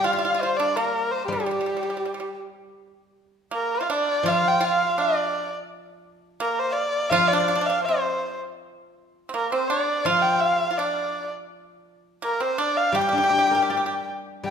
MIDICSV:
0, 0, Header, 1, 4, 480
1, 0, Start_track
1, 0, Tempo, 732601
1, 864, Time_signature, 2, 2, 24, 8
1, 2795, Tempo, 715137
1, 4715, Tempo, 737101
1, 6155, Tempo, 717703
1, 8075, Tempo, 738007
1, 9035, Tempo, 777202
1, 9540, End_track
2, 0, Start_track
2, 0, Title_t, "Erhu"
2, 0, Program_c, 0, 110
2, 36, Note_on_c, 0, 77, 75
2, 267, Note_on_c, 0, 72, 72
2, 277, Note_off_c, 0, 77, 0
2, 373, Note_on_c, 0, 74, 77
2, 382, Note_off_c, 0, 72, 0
2, 497, Note_on_c, 0, 70, 68
2, 506, Note_off_c, 0, 74, 0
2, 729, Note_on_c, 0, 72, 67
2, 739, Note_off_c, 0, 70, 0
2, 839, Note_off_c, 0, 72, 0
2, 843, Note_on_c, 0, 67, 64
2, 1556, Note_off_c, 0, 67, 0
2, 2327, Note_on_c, 0, 70, 67
2, 2456, Note_on_c, 0, 72, 69
2, 2466, Note_off_c, 0, 70, 0
2, 2506, Note_on_c, 0, 77, 54
2, 2516, Note_off_c, 0, 72, 0
2, 2560, Note_on_c, 0, 74, 79
2, 2570, Note_off_c, 0, 77, 0
2, 2804, Note_on_c, 0, 77, 92
2, 2814, Note_off_c, 0, 74, 0
2, 2938, Note_on_c, 0, 79, 82
2, 2948, Note_off_c, 0, 77, 0
2, 3051, Note_on_c, 0, 77, 81
2, 3061, Note_off_c, 0, 79, 0
2, 3296, Note_on_c, 0, 74, 74
2, 3307, Note_off_c, 0, 77, 0
2, 3647, Note_off_c, 0, 74, 0
2, 4235, Note_on_c, 0, 70, 79
2, 4356, Note_on_c, 0, 72, 82
2, 4366, Note_off_c, 0, 70, 0
2, 4437, Note_on_c, 0, 77, 65
2, 4446, Note_on_c, 0, 74, 89
2, 4447, Note_off_c, 0, 72, 0
2, 4456, Note_off_c, 0, 77, 0
2, 4695, Note_on_c, 0, 77, 99
2, 4705, Note_off_c, 0, 74, 0
2, 4815, Note_on_c, 0, 74, 85
2, 4825, Note_off_c, 0, 77, 0
2, 5065, Note_on_c, 0, 77, 75
2, 5075, Note_off_c, 0, 74, 0
2, 5181, Note_off_c, 0, 77, 0
2, 5185, Note_on_c, 0, 72, 66
2, 5526, Note_off_c, 0, 72, 0
2, 6162, Note_on_c, 0, 70, 68
2, 6272, Note_off_c, 0, 70, 0
2, 6282, Note_on_c, 0, 72, 72
2, 6384, Note_on_c, 0, 74, 77
2, 6394, Note_off_c, 0, 72, 0
2, 6639, Note_on_c, 0, 77, 87
2, 6649, Note_off_c, 0, 74, 0
2, 6744, Note_on_c, 0, 79, 84
2, 6754, Note_off_c, 0, 77, 0
2, 6870, Note_on_c, 0, 77, 86
2, 6880, Note_off_c, 0, 79, 0
2, 7115, Note_on_c, 0, 74, 74
2, 7125, Note_off_c, 0, 77, 0
2, 7473, Note_off_c, 0, 74, 0
2, 8100, Note_on_c, 0, 70, 73
2, 8208, Note_on_c, 0, 72, 75
2, 8218, Note_off_c, 0, 70, 0
2, 8318, Note_on_c, 0, 74, 81
2, 8328, Note_off_c, 0, 72, 0
2, 8439, Note_on_c, 0, 77, 84
2, 8448, Note_off_c, 0, 74, 0
2, 8566, Note_on_c, 0, 79, 94
2, 8576, Note_off_c, 0, 77, 0
2, 9279, Note_off_c, 0, 79, 0
2, 9512, Note_on_c, 0, 79, 73
2, 9540, Note_off_c, 0, 79, 0
2, 9540, End_track
3, 0, Start_track
3, 0, Title_t, "Pipa"
3, 0, Program_c, 1, 105
3, 28, Note_on_c, 1, 65, 65
3, 75, Note_off_c, 1, 65, 0
3, 86, Note_on_c, 1, 65, 49
3, 114, Note_off_c, 1, 65, 0
3, 122, Note_on_c, 1, 65, 60
3, 154, Note_off_c, 1, 65, 0
3, 162, Note_on_c, 1, 65, 51
3, 214, Note_off_c, 1, 65, 0
3, 226, Note_on_c, 1, 65, 56
3, 270, Note_off_c, 1, 65, 0
3, 281, Note_on_c, 1, 65, 49
3, 323, Note_off_c, 1, 65, 0
3, 390, Note_on_c, 1, 62, 65
3, 499, Note_off_c, 1, 62, 0
3, 503, Note_on_c, 1, 58, 59
3, 838, Note_off_c, 1, 58, 0
3, 868, Note_on_c, 1, 55, 52
3, 909, Note_off_c, 1, 55, 0
3, 916, Note_on_c, 1, 55, 36
3, 951, Note_off_c, 1, 55, 0
3, 959, Note_on_c, 1, 55, 42
3, 982, Note_off_c, 1, 55, 0
3, 990, Note_on_c, 1, 55, 32
3, 1045, Note_off_c, 1, 55, 0
3, 1052, Note_on_c, 1, 55, 36
3, 1081, Note_off_c, 1, 55, 0
3, 1089, Note_on_c, 1, 55, 31
3, 1146, Note_off_c, 1, 55, 0
3, 1157, Note_on_c, 1, 55, 35
3, 1190, Note_off_c, 1, 55, 0
3, 1197, Note_on_c, 1, 55, 29
3, 1237, Note_off_c, 1, 55, 0
3, 1245, Note_on_c, 1, 55, 35
3, 1282, Note_off_c, 1, 55, 0
3, 1290, Note_on_c, 1, 55, 33
3, 1339, Note_off_c, 1, 55, 0
3, 1346, Note_on_c, 1, 55, 33
3, 1396, Note_off_c, 1, 55, 0
3, 1404, Note_on_c, 1, 55, 29
3, 1432, Note_off_c, 1, 55, 0
3, 1440, Note_on_c, 1, 55, 37
3, 1497, Note_off_c, 1, 55, 0
3, 2302, Note_on_c, 1, 58, 58
3, 2490, Note_off_c, 1, 58, 0
3, 2493, Note_on_c, 1, 65, 50
3, 2548, Note_off_c, 1, 65, 0
3, 2553, Note_on_c, 1, 62, 68
3, 2775, Note_off_c, 1, 62, 0
3, 2790, Note_on_c, 1, 65, 80
3, 3016, Note_off_c, 1, 65, 0
3, 3023, Note_on_c, 1, 65, 72
3, 3253, Note_off_c, 1, 65, 0
3, 3274, Note_on_c, 1, 62, 59
3, 3610, Note_off_c, 1, 62, 0
3, 4229, Note_on_c, 1, 58, 68
3, 4687, Note_off_c, 1, 58, 0
3, 4713, Note_on_c, 1, 65, 89
3, 4826, Note_off_c, 1, 65, 0
3, 4849, Note_on_c, 1, 62, 76
3, 4886, Note_off_c, 1, 62, 0
3, 4894, Note_on_c, 1, 62, 55
3, 4935, Note_off_c, 1, 62, 0
3, 4946, Note_on_c, 1, 62, 60
3, 4986, Note_off_c, 1, 62, 0
3, 4994, Note_on_c, 1, 62, 53
3, 5024, Note_off_c, 1, 62, 0
3, 5032, Note_on_c, 1, 62, 61
3, 5078, Note_off_c, 1, 62, 0
3, 5086, Note_on_c, 1, 62, 53
3, 5130, Note_off_c, 1, 62, 0
3, 5209, Note_on_c, 1, 60, 53
3, 5538, Note_off_c, 1, 60, 0
3, 6124, Note_on_c, 1, 60, 47
3, 6153, Note_off_c, 1, 60, 0
3, 6156, Note_on_c, 1, 58, 59
3, 6269, Note_off_c, 1, 58, 0
3, 6279, Note_on_c, 1, 60, 65
3, 6391, Note_off_c, 1, 60, 0
3, 6397, Note_on_c, 1, 62, 71
3, 6621, Note_off_c, 1, 62, 0
3, 6637, Note_on_c, 1, 65, 84
3, 7042, Note_off_c, 1, 65, 0
3, 7069, Note_on_c, 1, 65, 47
3, 7115, Note_off_c, 1, 65, 0
3, 7126, Note_on_c, 1, 62, 57
3, 7453, Note_off_c, 1, 62, 0
3, 8084, Note_on_c, 1, 58, 64
3, 8190, Note_off_c, 1, 58, 0
3, 8202, Note_on_c, 1, 60, 61
3, 8308, Note_off_c, 1, 60, 0
3, 8319, Note_on_c, 1, 62, 72
3, 8537, Note_off_c, 1, 62, 0
3, 8555, Note_on_c, 1, 67, 76
3, 8590, Note_off_c, 1, 67, 0
3, 8598, Note_on_c, 1, 67, 53
3, 8639, Note_off_c, 1, 67, 0
3, 8647, Note_on_c, 1, 67, 56
3, 8694, Note_off_c, 1, 67, 0
3, 8706, Note_on_c, 1, 67, 45
3, 8736, Note_off_c, 1, 67, 0
3, 8743, Note_on_c, 1, 67, 52
3, 8773, Note_off_c, 1, 67, 0
3, 8781, Note_on_c, 1, 67, 43
3, 8833, Note_off_c, 1, 67, 0
3, 8841, Note_on_c, 1, 67, 50
3, 8887, Note_off_c, 1, 67, 0
3, 8894, Note_on_c, 1, 67, 44
3, 8938, Note_off_c, 1, 67, 0
3, 8946, Note_on_c, 1, 67, 51
3, 8988, Note_off_c, 1, 67, 0
3, 8996, Note_on_c, 1, 67, 45
3, 9039, Note_off_c, 1, 67, 0
3, 9046, Note_on_c, 1, 67, 49
3, 9081, Note_off_c, 1, 67, 0
3, 9089, Note_on_c, 1, 67, 43
3, 9136, Note_off_c, 1, 67, 0
3, 9144, Note_on_c, 1, 67, 49
3, 9188, Note_off_c, 1, 67, 0
3, 9540, End_track
4, 0, Start_track
4, 0, Title_t, "Guzheng"
4, 0, Program_c, 2, 107
4, 0, Note_on_c, 2, 50, 54
4, 0, Note_on_c, 2, 55, 54
4, 376, Note_off_c, 2, 50, 0
4, 832, Note_off_c, 2, 55, 0
4, 840, Note_on_c, 2, 55, 52
4, 2306, Note_off_c, 2, 55, 0
4, 2773, Note_on_c, 2, 53, 52
4, 4220, Note_off_c, 2, 53, 0
4, 4703, Note_on_c, 2, 53, 57
4, 6148, Note_off_c, 2, 53, 0
4, 6630, Note_on_c, 2, 53, 56
4, 8071, Note_off_c, 2, 53, 0
4, 8540, Note_on_c, 2, 55, 56
4, 8672, Note_on_c, 2, 62, 42
4, 8786, Note_on_c, 2, 67, 42
4, 8921, Note_on_c, 2, 70, 42
4, 9042, Note_on_c, 2, 74, 42
4, 9491, Note_off_c, 2, 55, 0
4, 9499, Note_on_c, 2, 55, 42
4, 9540, Note_off_c, 2, 55, 0
4, 9540, Note_off_c, 2, 62, 0
4, 9540, Note_off_c, 2, 67, 0
4, 9540, Note_off_c, 2, 70, 0
4, 9540, Note_off_c, 2, 74, 0
4, 9540, End_track
0, 0, End_of_file